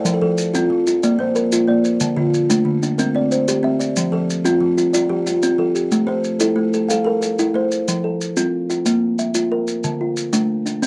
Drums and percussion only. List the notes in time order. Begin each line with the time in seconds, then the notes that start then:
0.05 maracas
0.38 maracas
0.55 maracas
0.87 maracas
1.03 maracas
1.36 maracas
1.52 maracas
1.85 maracas
2.00 maracas
2.34 maracas
2.50 maracas
2.83 maracas
2.99 maracas
3.32 maracas
3.48 maracas
3.81 maracas
3.96 maracas
4.30 maracas
4.45 maracas
4.78 maracas
4.94 maracas
5.27 maracas
5.43 maracas
5.75 maracas
5.92 maracas
6.24 maracas
6.40 maracas
6.74 maracas
6.90 maracas
7.22 maracas
7.39 maracas
7.71 maracas
7.88 maracas
8.21 maracas
8.37 maracas
8.70 maracas
8.86 maracas
9.19 maracas
9.35 maracas
9.68 maracas
9.84 maracas
10.17 maracas
10.33 maracas
10.66 maracas
10.83 maracas